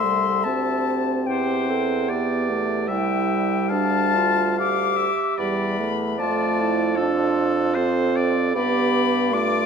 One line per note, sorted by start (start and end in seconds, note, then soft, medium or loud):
0.00 0.42 C2 medium
0.00 0.48 G3 medium
0.00 0.49 A4 medium
0.00 1.12 E5 medium
0.00 0.45 C6 loud
0.43 1.29 D2 medium
0.43 2.10 C4 medium
0.43 1.28 A5 loud
0.48 1.28 G4 medium
1.26 2.91 E2 medium
1.26 1.68 G4 medium
1.26 2.10 C5 medium
1.26 2.48 G5 medium
1.69 2.11 A4 medium
2.08 2.51 B3 medium
2.08 2.92 G4 medium
2.08 2.89 D5 medium
2.50 2.91 A3 medium
2.88 3.70 C2 medium
2.88 5.12 G3 medium
2.88 3.71 E4 medium
2.88 3.68 E5 medium
2.88 3.71 G5 loud
3.68 5.09 D2 medium
3.68 4.16 D4 medium
3.68 4.55 F5 medium
3.68 4.57 A5 loud
4.15 4.61 F4 medium
4.57 5.93 G4 medium
4.57 4.97 F5 medium
4.57 5.37 D6 loud
4.96 5.39 E5 medium
5.38 6.20 E2 medium
5.38 5.81 G3 medium
5.38 5.92 D5 medium
5.38 6.21 B5 loud
5.79 6.19 A3 medium
6.18 8.55 F2 loud
6.18 6.96 A3 medium
6.18 6.62 F4 medium
6.18 6.98 D5 medium
6.18 7.37 A5 loud
6.61 7.00 E4 medium
6.96 7.77 D4 medium
6.96 7.78 F4 medium
6.96 7.76 A4 medium
7.74 8.55 C4 medium
7.74 8.57 A4 medium
7.74 8.17 C5 medium
8.16 8.54 D5 loud
8.54 9.66 G2 loud
8.54 9.35 B3 medium
8.54 9.35 G4 medium
8.54 9.32 D5 medium
8.54 9.35 B5 loud
9.33 9.66 A3 loud
9.33 9.66 F4 medium
9.33 9.66 D5 loud
9.33 9.66 D6 loud